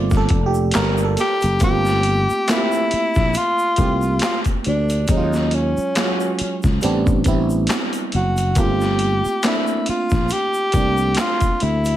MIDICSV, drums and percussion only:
0, 0, Header, 1, 2, 480
1, 0, Start_track
1, 0, Tempo, 869565
1, 888, Time_signature, 4, 2, 24, 8
1, 6606, End_track
2, 0, Start_track
2, 0, Title_t, "Drums"
2, 57, Note_on_c, 9, 82, 41
2, 62, Note_on_c, 9, 36, 89
2, 66, Note_on_c, 9, 38, 40
2, 112, Note_off_c, 9, 82, 0
2, 118, Note_off_c, 9, 36, 0
2, 121, Note_off_c, 9, 38, 0
2, 158, Note_on_c, 9, 42, 59
2, 167, Note_on_c, 9, 36, 88
2, 213, Note_off_c, 9, 42, 0
2, 223, Note_off_c, 9, 36, 0
2, 298, Note_on_c, 9, 82, 45
2, 353, Note_off_c, 9, 82, 0
2, 394, Note_on_c, 9, 42, 84
2, 409, Note_on_c, 9, 26, 62
2, 409, Note_on_c, 9, 82, 60
2, 411, Note_on_c, 9, 39, 90
2, 413, Note_on_c, 9, 38, 109
2, 450, Note_off_c, 9, 42, 0
2, 464, Note_off_c, 9, 26, 0
2, 464, Note_off_c, 9, 82, 0
2, 466, Note_off_c, 9, 39, 0
2, 468, Note_off_c, 9, 38, 0
2, 539, Note_on_c, 9, 82, 45
2, 594, Note_off_c, 9, 82, 0
2, 646, Note_on_c, 9, 42, 63
2, 648, Note_on_c, 9, 82, 45
2, 656, Note_on_c, 9, 38, 34
2, 701, Note_off_c, 9, 42, 0
2, 704, Note_off_c, 9, 82, 0
2, 711, Note_off_c, 9, 38, 0
2, 779, Note_on_c, 9, 82, 49
2, 786, Note_on_c, 9, 42, 43
2, 834, Note_off_c, 9, 82, 0
2, 841, Note_off_c, 9, 42, 0
2, 883, Note_on_c, 9, 82, 60
2, 884, Note_on_c, 9, 42, 64
2, 889, Note_on_c, 9, 36, 90
2, 938, Note_off_c, 9, 82, 0
2, 939, Note_off_c, 9, 42, 0
2, 945, Note_off_c, 9, 36, 0
2, 1023, Note_on_c, 9, 82, 44
2, 1030, Note_on_c, 9, 38, 31
2, 1078, Note_off_c, 9, 82, 0
2, 1086, Note_off_c, 9, 38, 0
2, 1123, Note_on_c, 9, 42, 62
2, 1178, Note_off_c, 9, 42, 0
2, 1268, Note_on_c, 9, 82, 41
2, 1323, Note_off_c, 9, 82, 0
2, 1368, Note_on_c, 9, 42, 69
2, 1369, Note_on_c, 9, 26, 57
2, 1369, Note_on_c, 9, 82, 57
2, 1374, Note_on_c, 9, 39, 87
2, 1376, Note_on_c, 9, 38, 102
2, 1423, Note_off_c, 9, 42, 0
2, 1425, Note_off_c, 9, 26, 0
2, 1425, Note_off_c, 9, 82, 0
2, 1429, Note_off_c, 9, 39, 0
2, 1431, Note_off_c, 9, 38, 0
2, 1501, Note_on_c, 9, 82, 40
2, 1556, Note_off_c, 9, 82, 0
2, 1606, Note_on_c, 9, 42, 70
2, 1661, Note_off_c, 9, 42, 0
2, 1736, Note_on_c, 9, 82, 45
2, 1746, Note_on_c, 9, 36, 73
2, 1746, Note_on_c, 9, 38, 32
2, 1792, Note_off_c, 9, 82, 0
2, 1801, Note_off_c, 9, 36, 0
2, 1801, Note_off_c, 9, 38, 0
2, 1843, Note_on_c, 9, 82, 60
2, 1849, Note_on_c, 9, 42, 75
2, 1898, Note_off_c, 9, 82, 0
2, 1904, Note_off_c, 9, 42, 0
2, 1979, Note_on_c, 9, 82, 42
2, 2034, Note_off_c, 9, 82, 0
2, 2077, Note_on_c, 9, 42, 59
2, 2085, Note_on_c, 9, 82, 46
2, 2087, Note_on_c, 9, 36, 77
2, 2132, Note_off_c, 9, 42, 0
2, 2140, Note_off_c, 9, 82, 0
2, 2142, Note_off_c, 9, 36, 0
2, 2218, Note_on_c, 9, 82, 44
2, 2273, Note_off_c, 9, 82, 0
2, 2315, Note_on_c, 9, 42, 82
2, 2330, Note_on_c, 9, 26, 57
2, 2330, Note_on_c, 9, 82, 58
2, 2332, Note_on_c, 9, 39, 90
2, 2334, Note_on_c, 9, 38, 113
2, 2370, Note_off_c, 9, 42, 0
2, 2385, Note_off_c, 9, 26, 0
2, 2385, Note_off_c, 9, 82, 0
2, 2387, Note_off_c, 9, 39, 0
2, 2389, Note_off_c, 9, 38, 0
2, 2454, Note_on_c, 9, 42, 37
2, 2458, Note_on_c, 9, 82, 46
2, 2460, Note_on_c, 9, 36, 72
2, 2509, Note_off_c, 9, 42, 0
2, 2513, Note_off_c, 9, 82, 0
2, 2515, Note_off_c, 9, 36, 0
2, 2563, Note_on_c, 9, 42, 56
2, 2619, Note_off_c, 9, 42, 0
2, 2701, Note_on_c, 9, 82, 46
2, 2704, Note_on_c, 9, 42, 41
2, 2756, Note_off_c, 9, 82, 0
2, 2759, Note_off_c, 9, 42, 0
2, 2802, Note_on_c, 9, 42, 70
2, 2803, Note_on_c, 9, 82, 60
2, 2808, Note_on_c, 9, 36, 92
2, 2857, Note_off_c, 9, 42, 0
2, 2858, Note_off_c, 9, 82, 0
2, 2863, Note_off_c, 9, 36, 0
2, 2942, Note_on_c, 9, 82, 44
2, 2948, Note_on_c, 9, 38, 32
2, 2998, Note_off_c, 9, 82, 0
2, 3003, Note_off_c, 9, 38, 0
2, 3043, Note_on_c, 9, 42, 59
2, 3098, Note_off_c, 9, 42, 0
2, 3186, Note_on_c, 9, 82, 41
2, 3241, Note_off_c, 9, 82, 0
2, 3286, Note_on_c, 9, 42, 72
2, 3289, Note_on_c, 9, 26, 59
2, 3289, Note_on_c, 9, 82, 57
2, 3293, Note_on_c, 9, 39, 89
2, 3295, Note_on_c, 9, 38, 101
2, 3342, Note_off_c, 9, 42, 0
2, 3344, Note_off_c, 9, 26, 0
2, 3344, Note_off_c, 9, 82, 0
2, 3348, Note_off_c, 9, 39, 0
2, 3350, Note_off_c, 9, 38, 0
2, 3422, Note_on_c, 9, 82, 40
2, 3477, Note_off_c, 9, 82, 0
2, 3525, Note_on_c, 9, 42, 76
2, 3580, Note_off_c, 9, 42, 0
2, 3657, Note_on_c, 9, 82, 44
2, 3665, Note_on_c, 9, 36, 76
2, 3665, Note_on_c, 9, 38, 30
2, 3712, Note_off_c, 9, 82, 0
2, 3720, Note_off_c, 9, 36, 0
2, 3720, Note_off_c, 9, 38, 0
2, 3763, Note_on_c, 9, 82, 65
2, 3769, Note_on_c, 9, 42, 78
2, 3819, Note_off_c, 9, 82, 0
2, 3824, Note_off_c, 9, 42, 0
2, 3901, Note_on_c, 9, 82, 42
2, 3902, Note_on_c, 9, 36, 90
2, 3956, Note_off_c, 9, 82, 0
2, 3957, Note_off_c, 9, 36, 0
2, 3998, Note_on_c, 9, 42, 58
2, 4006, Note_on_c, 9, 82, 43
2, 4007, Note_on_c, 9, 36, 79
2, 4053, Note_off_c, 9, 42, 0
2, 4061, Note_off_c, 9, 82, 0
2, 4062, Note_off_c, 9, 36, 0
2, 4139, Note_on_c, 9, 82, 45
2, 4195, Note_off_c, 9, 82, 0
2, 4233, Note_on_c, 9, 42, 79
2, 4250, Note_on_c, 9, 26, 59
2, 4250, Note_on_c, 9, 39, 88
2, 4250, Note_on_c, 9, 82, 59
2, 4252, Note_on_c, 9, 38, 107
2, 4289, Note_off_c, 9, 42, 0
2, 4305, Note_off_c, 9, 39, 0
2, 4306, Note_off_c, 9, 26, 0
2, 4306, Note_off_c, 9, 82, 0
2, 4307, Note_off_c, 9, 38, 0
2, 4376, Note_on_c, 9, 42, 39
2, 4378, Note_on_c, 9, 82, 45
2, 4431, Note_off_c, 9, 42, 0
2, 4434, Note_off_c, 9, 82, 0
2, 4483, Note_on_c, 9, 42, 61
2, 4538, Note_off_c, 9, 42, 0
2, 4620, Note_on_c, 9, 82, 46
2, 4624, Note_on_c, 9, 42, 40
2, 4675, Note_off_c, 9, 82, 0
2, 4680, Note_off_c, 9, 42, 0
2, 4721, Note_on_c, 9, 42, 68
2, 4723, Note_on_c, 9, 82, 60
2, 4727, Note_on_c, 9, 36, 100
2, 4777, Note_off_c, 9, 42, 0
2, 4778, Note_off_c, 9, 82, 0
2, 4782, Note_off_c, 9, 36, 0
2, 4862, Note_on_c, 9, 82, 43
2, 4868, Note_on_c, 9, 38, 32
2, 4917, Note_off_c, 9, 82, 0
2, 4923, Note_off_c, 9, 38, 0
2, 4961, Note_on_c, 9, 42, 61
2, 5017, Note_off_c, 9, 42, 0
2, 5106, Note_on_c, 9, 82, 41
2, 5161, Note_off_c, 9, 82, 0
2, 5205, Note_on_c, 9, 42, 75
2, 5206, Note_on_c, 9, 26, 59
2, 5206, Note_on_c, 9, 82, 61
2, 5211, Note_on_c, 9, 39, 91
2, 5213, Note_on_c, 9, 38, 106
2, 5260, Note_off_c, 9, 42, 0
2, 5261, Note_off_c, 9, 26, 0
2, 5261, Note_off_c, 9, 82, 0
2, 5266, Note_off_c, 9, 39, 0
2, 5268, Note_off_c, 9, 38, 0
2, 5338, Note_on_c, 9, 82, 39
2, 5393, Note_off_c, 9, 82, 0
2, 5443, Note_on_c, 9, 42, 70
2, 5498, Note_off_c, 9, 42, 0
2, 5573, Note_on_c, 9, 82, 41
2, 5585, Note_on_c, 9, 36, 78
2, 5585, Note_on_c, 9, 38, 33
2, 5628, Note_off_c, 9, 82, 0
2, 5640, Note_off_c, 9, 36, 0
2, 5640, Note_off_c, 9, 38, 0
2, 5680, Note_on_c, 9, 82, 63
2, 5689, Note_on_c, 9, 42, 80
2, 5735, Note_off_c, 9, 82, 0
2, 5744, Note_off_c, 9, 42, 0
2, 5817, Note_on_c, 9, 82, 44
2, 5872, Note_off_c, 9, 82, 0
2, 5918, Note_on_c, 9, 42, 59
2, 5924, Note_on_c, 9, 82, 47
2, 5927, Note_on_c, 9, 36, 88
2, 5974, Note_off_c, 9, 42, 0
2, 5979, Note_off_c, 9, 82, 0
2, 5982, Note_off_c, 9, 36, 0
2, 6057, Note_on_c, 9, 82, 47
2, 6112, Note_off_c, 9, 82, 0
2, 6152, Note_on_c, 9, 42, 83
2, 6169, Note_on_c, 9, 26, 61
2, 6169, Note_on_c, 9, 39, 86
2, 6169, Note_on_c, 9, 82, 57
2, 6171, Note_on_c, 9, 38, 114
2, 6208, Note_off_c, 9, 42, 0
2, 6224, Note_off_c, 9, 26, 0
2, 6224, Note_off_c, 9, 39, 0
2, 6224, Note_off_c, 9, 82, 0
2, 6226, Note_off_c, 9, 38, 0
2, 6295, Note_on_c, 9, 42, 41
2, 6298, Note_on_c, 9, 82, 45
2, 6300, Note_on_c, 9, 36, 76
2, 6351, Note_off_c, 9, 42, 0
2, 6353, Note_off_c, 9, 82, 0
2, 6355, Note_off_c, 9, 36, 0
2, 6405, Note_on_c, 9, 42, 60
2, 6460, Note_off_c, 9, 42, 0
2, 6540, Note_on_c, 9, 82, 49
2, 6546, Note_on_c, 9, 42, 42
2, 6595, Note_off_c, 9, 82, 0
2, 6601, Note_off_c, 9, 42, 0
2, 6606, End_track
0, 0, End_of_file